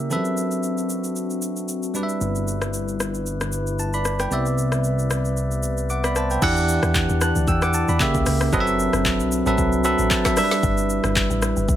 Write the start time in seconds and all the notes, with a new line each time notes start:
Already playing: C#3 A#3 G4 E5
0.10 E3 C4 D4 F#4 A4 B4 E5, shaker
0.16 F#3
0.25 shaker
0.37 shaker
0.51 shaker
0.63 shaker
0.78 shaker
0.90 shaker
1.04 shaker
1.16 shaker
1.30 shaker
1.42 shaker
1.56 shaker
1.68 shaker
1.83 shaker
1.94 G3 D4 E4 B4 D5, shaker
2.03 E5
2.09 shaker
2.21 G1, shaker
2.35 shaker
2.48 shaker
2.62 cross-stick, shaker
2.74 shaker
2.88 shaker
3.00 cross-stick, shaker
3.14 shaker
3.26 shaker
3.41 cross-stick, shaker
3.52 shaker
3.67 shaker
3.79 A5, shaker
3.93 D5 B5, shaker
4.05 cross-stick, shaker
4.20 B4 G5, cross-stick, shaker
4.31 C2 C3 B3 B4 D5 E5, shaker
4.46 shaker
4.58 shaker
4.72 cross-stick, shaker
4.84 shaker
4.99 shaker
5.10 cross-stick, shaker
5.25 shaker
5.37 shaker
5.51 shaker
5.63 shaker
5.78 shaker
5.90 F#5 D6, shaker
6.04 D5 B5, cross-stick, shaker
6.16 C5 A5, cross-stick, shaker
6.30 B4 G5, shaker
6.42 E2 E3 D4 E4 G4 D5 F#5, kick, crash, shaker
6.57 shaker
6.69 shaker
6.83 E2, cross-stick, shaker
6.95 kick, clap, shaker
7.09 E2, shaker
7.21 A5 F#6, cross-stick, shaker
7.36 D2, shaker
7.48 E2 G5 E6, kick, shaker
7.62 F#5 D6, cross-stick, shaker
7.74 A5, shaker
7.88 E2 D5 B5, shaker
8.00 C#3 A#3 C#4 G4 A#4 E5, kick, clap, shaker
8.15 C#2, kick, shaker
8.26 C#2, cross-stick, open hi-hat, shaker
8.41 cross-stick, shaker
8.53 F#1 F#3 C4 D4 F#4 A4 B4 D#5, kick, shaker
8.60 E5
8.67 shaker
8.79 shaker
8.93 F#1, cross-stick, shaker
9.05 kick, clap, shaker
9.20 B1, shaker
9.32 shaker
9.46 A1 F#3 C4 A4 B4 E5, shaker
9.58 C2, kick, shaker
9.72 shaker
9.84 F#3 C4 A4 B4 E5 B5, shaker
9.99 A1, shaker
10.11 A5, kick, clap, shaker
10.25 E5, kick, cross-stick, snare, shaker
10.37 G3 D4 E4 A#4 B4 E5, cross-stick, open hi-hat, shaker
10.44 B4
10.51 snare, shaker
10.63 G1, kick, shaker
10.78 shaker
10.90 shaker
11.04 G1, cross-stick, shaker
11.16 kick, clap, shaker
11.30 A1, shaker
11.42 cross-stick, shaker
11.57 G1, shaker
11.69 B1, kick, shaker